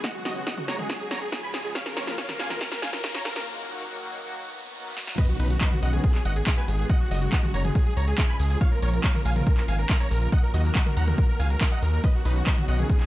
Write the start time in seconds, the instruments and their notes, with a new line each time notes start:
Already playing: riser
0.04 analog synth pad C#3 F#3 G#3 F#4, supersaw synth D#5 F#5, kick, snare, closed hi-hat
0.15 analog synth pad C#3 F#3 G#3 F#4, supersaw synth F#4, closed hi-hat
0.25 analog synth bass F#1, analog synth pad C#3 F#3 G#3 F#4, supersaw synth F#4 D#5, snare, open hi-hat
0.36 supersaw synth F#4, closed hi-hat
0.47 analog synth pad C#3 F#3 G#3 F#4, supersaw synth D#5 F#5, kick, snare, closed hi-hat
0.57 analog synth pad C#3 F#3 G#3 F#4, supersaw synth F#4, closed hi-hat, mid tom
0.68 analog synth bass F#1, supersaw synth C#5 A#5, snare, open hi-hat
0.79 analog synth pad C#3 F#3 G#3 F#4, supersaw synth G#4, closed hi-hat, mid tom
0.89 supersaw synth G#4, kick, snare, closed hi-hat
1.00 supersaw synth G#4, closed hi-hat
1.11 analog synth bass C#2, supersaw synth C#5 A#5, snare, open hi-hat
1.22 supersaw synth G#4, closed hi-hat
1.32 analog synth pad C#3 F3 G#3 F4, supersaw synth G#4, kick, snare, closed hi-hat
1.43 supersaw synth G#5 B5, closed hi-hat
1.54 analog synth bass C#2, supersaw synth G#4, snare, open hi-hat
1.64 analog synth pad C#3 F3 G#3 F4, supersaw synth G#4, closed hi-hat
1.75 analog synth pad C#3 F3 A#3 F4, supersaw synth C#5 F5, kick, snare, closed hi-hat
1.86 analog synth pad C#3 F3 A#3 F4, supersaw synth A#4, snare, closed hi-hat
1.97 analog synth bass A#1, analog synth pad C#3 F3 A#3 F4, supersaw synth A#4 C#5, snare, open hi-hat
2.07 supersaw synth A#4, snare, closed hi-hat
2.18 analog synth pad C#3 F3 A#3 F4, supersaw synth C#5 F5, kick, snare, closed hi-hat
2.29 analog synth pad C#3 F3 A#3 F4, supersaw synth A#4, snare, closed hi-hat, mid tom
2.39 analog synth bass A#1, supersaw synth F5 G#5, snare, open hi-hat
2.50 analog synth pad C#3 F3 A#3 F4, supersaw synth A#4, snare, closed hi-hat, mid tom
2.61 supersaw synth A#4, kick, snare, closed hi-hat
2.72 supersaw synth A#4, snare, closed hi-hat
2.82 analog synth bass G#1, supersaw synth F5 G#5, snare, open hi-hat
2.93 supersaw synth A#4, snare, closed hi-hat
3.04 analog synth pad C#3 F3 A#3 F4, supersaw synth A#4, kick, snare, closed hi-hat
3.14 supersaw synth C#5 A#5, snare, closed hi-hat
3.25 analog synth bass A#1, supersaw synth A#4, snare, open hi-hat
3.36 analog synth pad C#3 F3 A#3 F4, supersaw synth A#4, snare, closed hi-hat
3.47 analog synth pad D#3 F#3 A#3 F#4
3.57 analog synth pad D#3 F#3 A#3 F#4
3.68 analog synth pad D#3 F#3 A#3 F#4
3.89 analog synth pad D#3 F#3 A#3 F#4
4.00 analog synth pad D#3 F#3 A#3 F#4
4.22 analog synth pad D#3 F#3 A#3 F#4
4.32 swell
4.75 analog synth pad D#3 F#3 A#3 F#4
4.97 snare
5.07 analog synth pad D#3 F#3 A#3 F#4, snare
5.18 analog synth pad D#3 B3 C#4 F#4, supersaw synth B4 D#5, kick, closed hi-hat, crash, tambourine, impact
5.29 analog synth pad D#3 B3 C#4 F#4, supersaw synth F#4, closed hi-hat
5.39 analog synth bass B1, analog synth pad D#3 B3 C#4 F#4, supersaw synth D#4 B4, open hi-hat, tambourine
5.50 supersaw synth F#4, closed hi-hat, tambourine
5.61 analog synth pad D#3 B3 C#4 F#4, supersaw synth B4 D#5, kick, clap, closed hi-hat, tambourine
5.72 analog synth pad D#3 B3 C#4 F#4, supersaw synth F#4, closed hi-hat, mid tom
5.82 analog synth bass B1, supersaw synth D#5 F#5, open hi-hat, tambourine
5.93 analog synth pad D#3 B3 C#4 F#4, supersaw synth G#4, closed hi-hat, mid tom, tambourine
6.04 supersaw synth G#4, kick, closed hi-hat, tambourine
6.15 supersaw synth G#4, clap, closed hi-hat
6.25 analog synth bass G#1, supersaw synth D#5 F#5, open hi-hat, tambourine
6.36 supersaw synth G#4, closed hi-hat, tambourine
6.47 analog synth pad D#3 G#3 B3 F#4, supersaw synth G#4, kick, clap, closed hi-hat, tambourine
6.57 supersaw synth B4 G#5, closed hi-hat
6.68 analog synth bass G#1, supersaw synth G#4, open hi-hat, tambourine
6.79 analog synth pad D#3 G#3 B3 F#4, supersaw synth G#4, closed hi-hat, tambourine
6.89 analog synth pad C#3 F#3 G#3 F#4, supersaw synth D#5 F#5, kick, closed hi-hat, tambourine
7.00 analog synth pad C#3 F#3 G#3 F#4, supersaw synth F#4, closed hi-hat
7.11 analog synth bass F#1, analog synth pad C#3 F#3 G#3 F#4, supersaw synth F#4 D#5, open hi-hat, tambourine
7.22 supersaw synth F#4, open hi-hat, tambourine
7.32 analog synth pad C#3 F#3 G#3 F#4, supersaw synth D#5 F#5, kick, clap, closed hi-hat, tambourine
7.43 analog synth pad C#3 F#3 G#3 F#4, supersaw synth F#4, closed hi-hat, mid tom
7.54 analog synth bass F#1, supersaw synth C#5 A#5, open hi-hat, tambourine
7.65 analog synth pad C#3 F#3 G#3 F#4, supersaw synth G#4, closed hi-hat, mid tom, tambourine
7.75 supersaw synth G#4, kick, closed hi-hat, tambourine
7.86 supersaw synth G#4, closed hi-hat
7.97 analog synth bass C#2, supersaw synth C#5 A#5, open hi-hat, tambourine
8.07 supersaw synth G#4, closed hi-hat, tambourine
8.18 analog synth pad C#3 F3 G#3 F4, supersaw synth G#4, kick, clap, closed hi-hat, tambourine
8.29 supersaw synth G#5 B5, closed hi-hat
8.40 analog synth bass C#2, supersaw synth G#4, open hi-hat, tambourine
8.50 analog synth pad C#3 F3 G#3 F4, supersaw synth G#4, closed hi-hat, tambourine
8.61 analog synth pad C#3 F3 A#3 F4, supersaw synth C#5 F5, kick, closed hi-hat, tambourine
8.72 analog synth pad C#3 F3 A#3 F4, supersaw synth A#4, closed hi-hat
8.82 analog synth bass A#1, analog synth pad C#3 F3 A#3 F4, supersaw synth A#4 C#5, open hi-hat, tambourine
8.93 supersaw synth A#4, closed hi-hat, tambourine
9.04 analog synth pad C#3 F3 A#3 F4, supersaw synth C#5 F5, kick, clap, closed hi-hat, tambourine
9.15 analog synth pad C#3 F3 A#3 F4, supersaw synth A#4, closed hi-hat, mid tom
9.25 analog synth bass A#1, supersaw synth F5 G#5, open hi-hat, tambourine
9.36 analog synth pad C#3 F3 A#3 F4, supersaw synth A#4, closed hi-hat, mid tom, tambourine
9.47 supersaw synth A#4, kick, closed hi-hat, tambourine
9.57 supersaw synth A#4, clap, closed hi-hat
9.68 analog synth bass G#1, supersaw synth F5 G#5, open hi-hat, tambourine
9.79 supersaw synth A#4, closed hi-hat, tambourine
9.90 analog synth pad C#3 F3 A#3 F4, supersaw synth A#4, kick, clap, closed hi-hat, tambourine
10.00 supersaw synth C#5 A#5, closed hi-hat
10.11 analog synth bass A#1, supersaw synth A#4, open hi-hat, tambourine
10.22 analog synth pad C#3 F3 A#3 F4, supersaw synth A#4, closed hi-hat, tambourine
10.32 analog synth pad D#3 F#3 A#3 F#4, supersaw synth D#5 F#5, kick, closed hi-hat, tambourine
10.43 analog synth pad D#3 F#3 A#3 F#4, supersaw synth A#4, closed hi-hat
10.54 analog synth bass D#2, analog synth pad D#3 F#3 A#3 F#4, supersaw synth F#4 D#5, open hi-hat, tambourine
10.65 supersaw synth A#4, open hi-hat, tambourine
10.75 analog synth pad D#3 F#3 A#3 F#4, supersaw synth D#5 F#5, kick, clap, closed hi-hat, tambourine
10.86 analog synth pad D#3 F#3 A#3 F#4, supersaw synth A#4, closed hi-hat, mid tom
10.97 analog synth bass D#2, supersaw synth F#5 A#5, open hi-hat, tambourine
11.07 analog synth pad D#3 F#3 A#3 F#4, supersaw synth A#4, closed hi-hat, mid tom, tambourine
11.18 supersaw synth A#4, kick, closed hi-hat, tambourine
11.29 supersaw synth A#4, closed hi-hat
11.40 analog synth bass C#2, supersaw synth F5 G#5, open hi-hat, tambourine
11.50 supersaw synth A#4, closed hi-hat, tambourine
11.61 analog synth pad D#3 F#3 A#3 F#4, supersaw synth A#4, kick, clap, closed hi-hat, tambourine
11.72 supersaw synth D#5 F#5, closed hi-hat
11.82 analog synth bass D#2, supersaw synth A#4, open hi-hat, tambourine
11.93 analog synth pad D#3 F#3 A#3 F#4, supersaw synth A#4, closed hi-hat, tambourine
12.04 analog synth pad D#3 B3 C#4 F#4, supersaw synth B4 D#5, kick, closed hi-hat, tambourine
12.15 analog synth pad D#3 B3 C#4 F#4, supersaw synth F#4, closed hi-hat
12.25 analog synth bass B1, analog synth pad D#3 B3 C#4 F#4, supersaw synth D#4 B4, open hi-hat, tambourine
12.36 supersaw synth F#4, closed hi-hat, tambourine
12.47 analog synth pad D#3 B3 C#4 F#4, supersaw synth B4 D#5, kick, clap, closed hi-hat, tambourine
12.57 analog synth pad D#3 B3 C#4 F#4, supersaw synth F#4, closed hi-hat, mid tom
12.68 analog synth bass B1, supersaw synth D#5 F#5, open hi-hat, tambourine
12.79 analog synth pad D#3 B3 C#4 F#4, supersaw synth G#4, closed hi-hat, mid tom, tambourine
12.90 supersaw synth G#4, kick, closed hi-hat, tambourine
13.00 supersaw synth G#4, clap, closed hi-hat